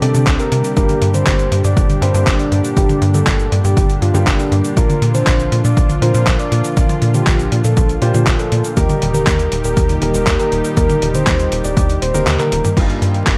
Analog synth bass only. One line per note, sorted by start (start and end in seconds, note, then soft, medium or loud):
0.02 0.13 C3 medium
0.14 0.25 C3 medium
0.27 0.38 C2 loud
0.52 0.63 C3 loud
0.77 0.88 G1 loud
1.02 1.23 G2 medium
1.27 1.48 G1 loud
1.52 1.62 G2 loud
1.64 1.75 G2 medium
1.77 1.98 G1 medium
2.02 2.12 G2 loud
2.14 2.25 G2 loud
2.27 2.38 G1 loud
2.52 2.63 G2 loud
2.77 2.88 G1 loud
3.02 3.23 G2 medium
3.27 3.48 G1 loud
3.52 3.63 G2 medium
3.64 3.75 G2 medium
3.77 3.98 G1 medium
4.02 4.13 G2 medium
4.14 4.25 G2 medium
4.27 4.38 G1 loud
4.52 4.63 G2 loud
4.77 4.88 A#1 loud
5.02 5.23 A#2 medium
5.27 5.48 A#1 loud
5.52 5.63 A#2 medium
5.64 5.75 A#2 medium
5.77 5.98 A#1 medium
6.02 6.13 A#2 medium
6.14 6.25 A#2 loud
6.27 6.38 A#1 loud
6.52 6.63 A#2 loud
6.77 6.88 A#1 loud
7.02 7.23 A#2 medium
7.27 7.48 A#1 loud
7.52 7.63 A#2 loud
7.64 7.75 A#2 medium
7.77 7.98 A#1 medium
8.02 8.13 A#2 medium
8.14 8.25 A#2 medium
8.27 8.38 A#1 loud
8.52 8.63 A#2 loud
8.77 8.88 D#2 loud
9.02 9.23 D#1 medium
9.27 9.48 D#2 loud
9.52 9.63 D#1 medium
9.64 9.75 D#1 medium
9.77 9.98 D#2 medium
10.02 10.13 D#1 loud
10.14 10.25 D#1 loud
10.27 10.38 D#2 loud
10.52 10.63 D#1 loud
10.77 10.88 D#2 loud
11.02 11.23 D#1 loud
11.27 11.48 D#2 loud
11.52 11.63 D#1 medium
11.64 11.75 D#1 medium
11.77 11.98 D#2 medium
12.02 12.13 D#1 medium
12.14 12.25 D#1 medium
12.27 12.38 D#2 loud
12.52 12.63 D#1 loud
12.77 12.88 G1 loud
13.02 13.23 G2 medium
13.27 13.38 G1 loud